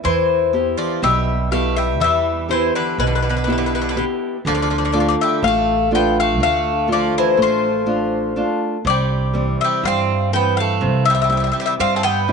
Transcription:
0.04 0.73 E2 medium
0.04 0.99 E3 medium
0.04 0.74 E3 medium
0.04 0.74 C5 medium
0.53 1.32 B3 soft
0.53 1.32 E4 soft
0.53 1.33 G4 soft
0.77 1.01 F3 medium
0.77 1.01 D5 medium
1.02 2.01 B1 loud
1.02 1.98 B2 medium
1.02 1.49 G3 medium
1.02 1.51 E5 medium
1.51 1.75 A3 medium
1.51 2.30 B3 soft
1.51 2.30 E4 soft
1.51 2.30 G4 soft
1.51 1.75 F5 medium
1.76 2.00 G3 medium
1.76 1.99 E5 medium
2.00 2.69 E2 medium
2.00 2.96 E3 medium
2.00 2.48 G3 medium
2.00 2.50 E5 medium
2.49 2.74 E3 medium
2.49 3.27 B3 soft
2.49 3.28 E4 soft
2.49 3.28 G4 medium
2.49 2.73 C5 medium
2.75 2.98 D3 medium
2.75 2.98 B4 medium
2.98 4.01 B1 medium
2.98 3.94 B2 medium
2.98 3.06 E3 medium
2.98 3.06 B4 medium
3.07 3.13 D3 soft
3.07 3.14 B4 soft
3.15 3.22 D3 soft
3.15 3.21 B4 medium
3.22 3.28 D3 soft
3.22 3.29 B4 soft
3.29 3.36 D3 soft
3.29 3.35 B4 medium
3.37 3.43 D3 soft
3.37 3.43 B4 soft
3.44 3.49 D3 soft
3.44 3.95 B3 medium
3.44 3.51 B4 soft
3.48 3.57 D3 soft
3.48 3.95 E4 medium
3.48 3.96 G4 medium
3.52 3.57 B4 soft
3.58 3.65 D3 soft
3.58 3.65 B4 medium
3.66 3.74 D3 soft
3.66 3.73 B4 soft
3.75 3.82 D3 soft
3.75 3.80 B4 soft
3.81 3.89 D3 soft
3.81 3.88 B4 medium
3.89 3.96 D3 soft
3.89 3.96 B4 medium
3.96 4.04 D3 soft
3.96 4.35 B3 medium
3.96 4.36 E4 soft
3.96 4.36 G4 soft
3.96 4.03 B4 soft
4.45 5.14 D2 loud
4.45 5.41 D3 medium
4.45 4.54 F3 medium
4.45 4.53 D5 medium
4.55 4.61 F3 soft
4.55 4.61 D5 medium
4.62 4.69 F3 medium
4.62 4.69 D5 medium
4.70 4.76 F3 soft
4.70 4.76 D5 soft
4.78 4.84 F3 soft
4.78 4.84 D5 medium
4.85 4.91 F3 soft
4.85 4.91 D5 soft
4.92 4.98 F3 soft
4.92 5.42 A3 medium
4.92 5.73 D4 soft
4.92 5.73 F4 medium
4.92 4.99 D5 medium
5.00 5.06 F3 soft
5.00 5.06 D5 medium
5.09 5.15 F3 medium
5.09 5.14 D5 medium
5.21 5.44 G3 medium
5.21 5.43 E5 medium
5.42 6.40 A1 medium
5.42 5.90 A3 medium
5.42 5.89 F5 medium
5.48 5.91 A3 medium
5.91 6.70 A3 soft
5.91 6.70 D4 soft
5.91 6.70 F4 medium
5.95 6.17 B3 medium
5.95 6.17 G5 medium
6.20 6.42 A3 medium
6.20 6.42 F5 medium
6.40 7.09 D2 loud
6.40 7.36 D3 medium
6.40 6.88 A3 medium
6.40 6.92 F5 medium
6.87 7.36 A3 soft
6.87 7.67 D4 soft
6.87 7.67 F4 soft
6.92 7.14 F3 medium
6.92 7.16 D5 medium
7.18 7.39 E3 medium
7.18 7.41 C5 medium
7.37 8.41 A1 medium
7.37 7.85 A3 medium
7.42 8.47 F3 medium
7.42 8.47 C5 medium
7.86 8.35 A3 soft
7.86 8.35 D4 soft
7.86 8.36 F4 medium
8.36 8.76 A3 soft
8.36 8.76 D4 soft
8.36 8.76 F4 medium
8.85 9.53 C2 medium
8.85 9.80 C3 medium
8.85 9.56 D5 medium
8.90 9.57 G3 medium
9.33 10.13 E3 medium
9.33 9.82 G3 soft
9.33 10.13 C4 soft
9.61 9.85 G3 medium
9.61 9.83 E5 medium
9.83 10.83 G2 medium
9.83 10.31 G3 medium
9.83 10.30 F5 medium
9.88 10.31 C4 medium
10.32 11.11 E3 medium
10.32 11.11 G3 soft
10.32 10.57 B3 medium
10.32 11.11 C4 soft
10.32 10.56 G5 medium
10.57 11.04 A3 medium
10.57 11.05 F5 medium
10.81 11.50 C2 medium
10.81 11.76 C3 medium
11.05 11.13 E5 medium
11.10 11.14 G3 medium
11.15 11.21 G3 soft
11.15 11.20 E5 medium
11.22 11.29 G3 medium
11.22 11.29 E5 medium
11.29 11.78 G3 soft
11.29 11.37 G3 soft
11.29 12.08 C4 soft
11.29 12.08 E4 medium
11.29 11.36 E5 medium
11.37 11.45 G3 soft
11.37 11.43 E5 medium
11.44 11.52 G3 soft
11.44 11.50 E5 soft
11.52 11.59 G3 soft
11.52 11.59 E5 medium
11.60 11.66 G3 medium
11.60 11.64 E5 medium
11.66 11.73 G3 medium
11.66 11.73 E5 medium
11.79 12.32 G2 medium
11.79 12.27 G3 medium
11.79 11.95 C4 medium
11.79 11.96 F5 medium
11.96 12.03 C4 medium
11.96 12.03 A5 medium
12.03 12.32 B3 medium
12.03 12.32 G5 loud
12.28 12.32 C3 soft
12.28 12.32 G3 medium
12.28 12.32 E4 medium

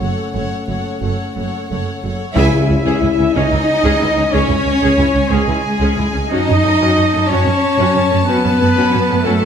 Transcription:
0.00 0.09 F#1 soft
0.00 0.09 F#2 soft
0.00 2.03 A3 medium
0.00 2.00 C#4 medium
0.00 0.34 A4 soft
0.00 0.33 C#5 soft
0.00 0.32 F#5 soft
0.34 0.43 F#1 soft
0.34 0.42 F#2 medium
0.34 0.67 A4 soft
0.34 0.66 C#5 soft
0.34 0.67 F#5 soft
0.68 0.77 F#1 soft
0.68 0.77 F#2 soft
0.68 1.00 A4 soft
0.68 1.01 C#5 soft
0.68 1.01 F#5 soft
1.01 1.10 F#1 soft
1.01 1.11 F#2 soft
1.01 1.34 A4 soft
1.01 1.35 C#5 soft
1.01 1.34 F#5 soft
1.35 1.45 F#1 soft
1.35 1.43 F#2 soft
1.35 1.68 A4 soft
1.35 1.69 C#5 soft
1.35 1.68 F#5 soft
1.70 1.79 F#1 soft
1.70 1.79 F#2 soft
1.70 2.02 A4 soft
1.70 2.03 C#5 soft
1.70 2.02 F#5 soft
2.04 2.12 F#1 soft
2.04 2.13 F#2 soft
2.04 2.36 A4 soft
2.04 2.36 C#5 soft
2.04 2.36 F#5 soft
2.35 2.52 C#2 loud
2.35 3.30 C#3 loud
2.35 2.50 C#4 medium
2.35 3.31 E4 loud
2.35 2.51 G#4 loud
2.35 3.30 E5 loud
2.35 3.30 E5 medium
2.35 6.26 G#5 loud
2.51 2.59 C#2 medium
2.51 2.58 C#4 medium
2.51 2.58 E4 medium
2.68 2.76 C#2 medium
2.68 2.75 C#4 medium
2.85 2.92 C#2 medium
2.85 3.01 C#4 medium
2.85 3.01 G#4 medium
3.02 3.09 C#2 medium
3.02 3.09 C#4 medium
3.02 3.09 E4 medium
3.18 3.25 C#2 medium
3.18 3.25 C#4 medium
3.34 3.42 C#2 medium
3.34 3.50 C#4 medium
3.34 4.32 D#4 medium
3.34 4.33 D#4 medium
3.34 3.50 G#4 medium
3.34 4.32 D#5 loud
3.34 4.33 D#5 medium
3.51 3.58 C#2 medium
3.51 3.58 C#4 medium
3.51 3.58 E4 medium
3.84 3.90 C#2 medium
3.84 3.99 C#4 medium
3.84 3.99 G#4 medium
4.00 4.07 C#2 medium
4.00 4.06 C#4 medium
4.00 4.07 E4 medium
4.16 4.23 C#2 medium
4.16 4.24 C#4 medium
4.32 4.39 C#2 medium
4.32 4.47 C#4 medium
4.32 5.28 C#4 medium
4.32 5.30 C#4 loud
4.32 4.47 G#4 medium
4.32 5.30 C#5 loud
4.32 5.28 C#5 medium
4.48 4.55 C#2 medium
4.48 4.55 C#4 medium
4.48 4.55 E4 medium
4.65 4.72 C#2 medium
4.65 4.73 C#4 medium
4.81 4.88 C#2 medium
4.81 4.97 C#4 medium
4.81 4.97 G#4 medium
4.97 5.04 C#2 medium
4.97 5.06 C#4 medium
4.97 5.05 E4 medium
5.13 5.20 C#2 medium
5.13 5.22 C#4 medium
5.29 5.37 C#2 medium
5.29 6.30 G#3 medium
5.29 5.46 C#4 medium
5.29 6.29 G#4 medium
5.29 6.31 G#4 medium
5.29 5.46 G#4 medium
5.47 5.53 C#2 medium
5.47 5.55 C#4 medium
5.47 5.55 E4 medium
5.80 5.87 C#2 medium
5.80 5.96 C#4 medium
5.80 5.96 G#4 medium
5.97 6.04 C#2 medium
5.97 6.03 C#4 medium
5.97 6.04 E4 medium
6.13 6.21 C#2 medium
6.13 6.20 C#4 medium
6.29 6.37 F#2 medium
6.29 6.46 C#4 medium
6.29 7.26 D#4 loud
6.29 6.46 F#4 medium
6.29 7.26 D#5 loud
6.29 7.27 D#5 loud
6.29 9.45 A5 medium
6.47 6.54 F#2 medium
6.47 6.54 C#4 medium
6.63 6.70 F#2 medium
6.63 6.70 A3 medium
6.63 6.70 C#4 medium
6.79 6.86 F#2 medium
6.79 6.95 C#4 medium
6.79 6.95 F#4 medium
6.96 7.02 F#2 medium
6.96 7.02 C#4 medium
7.14 7.20 F#2 medium
7.14 7.20 A3 medium
7.14 7.20 C#4 medium
7.28 7.36 F#2 medium
7.28 8.26 C#4 medium
7.28 7.45 C#4 medium
7.28 7.45 F#4 medium
7.28 8.26 C#5 medium
7.28 8.27 C#5 medium
7.45 7.52 F#2 medium
7.45 7.54 C#4 medium
7.78 7.84 F#2 medium
7.78 7.93 C#4 medium
7.78 7.93 F#4 medium
7.95 8.01 F#2 medium
7.95 8.01 C#4 medium
8.10 8.17 F#2 medium
8.10 8.17 A3 medium
8.10 8.18 C#4 medium
8.24 8.33 F#2 medium
8.24 9.21 B3 medium
8.24 8.42 C#4 medium
8.24 8.42 F#4 medium
8.24 9.21 B4 medium
8.24 9.21 B4 loud
8.43 8.50 F#2 medium
8.43 8.50 C#4 medium
8.59 8.66 F#2 medium
8.59 8.66 A3 medium
8.59 8.66 C#4 medium
8.75 8.82 F#2 medium
8.75 8.90 C#4 medium
8.75 8.90 F#4 medium
8.91 9.00 F#2 medium
8.91 8.98 C#4 medium
9.07 9.15 F#2 medium
9.07 9.14 A3 medium
9.07 9.14 C#4 medium
9.22 9.32 F#2 medium
9.22 9.45 A3 medium
9.22 9.39 C#4 medium
9.22 9.39 F#4 medium
9.22 9.45 A4 medium
9.41 9.45 F#2 medium
9.41 9.45 C#4 medium

